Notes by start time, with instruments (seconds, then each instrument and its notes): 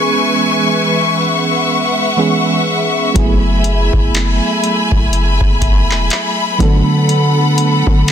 Already playing: fm electric piano E3 G#3 B3 C#4 G#4, string section B4 E5 G#5 C#6
1.19 string section F#5
2.17 fm electric piano E3 G#3 B3 C#4 G#4
3.14 808-style bass F#1, fm electric piano F#3 G#3 B3 E4, string section A3 G#5 B5, kick, closed hi-hat
3.19 fm electric piano A3 G#4
3.64 closed hi-hat
3.93 808-style bass F#1, kick
4.15 clap, closed hi-hat
4.64 closed hi-hat
4.92 808-style bass F#1, kick
5.13 closed hi-hat
5.41 808-style bass F#1, kick
5.62 kick, closed hi-hat
5.91 808-style bass E1, clap
6.10 clap, closed hi-hat
6.58 808-style bass D3, fm electric piano E3 A3 B3 D4, string section A4 B4 F#5, kick, closed hi-hat
6.63 fm electric piano F#3 A4
7.09 closed hi-hat
7.58 closed hi-hat
7.87 808-style bass D3, kick
8.08 closed hi-hat